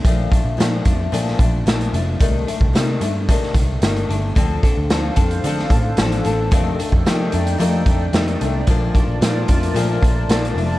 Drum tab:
HH |x-x-x-x-x-x-xxx-|x-x-x-x-x-x-xxx-|x-x-x-xxx-x-xxx-|x-x-x-xxx-x-xxx-|
SD |----o----o--o---|----o----o--o---|----o----o--o---|----o-------o---|
BD |o-o---o---o-----|o--o----o-o-----|o-o---o---o-----|o--o------o-----|

HH |x-x-x-xxx-x-xxo-|
SD |----o-------o---|
BD |o-o---o---o-----|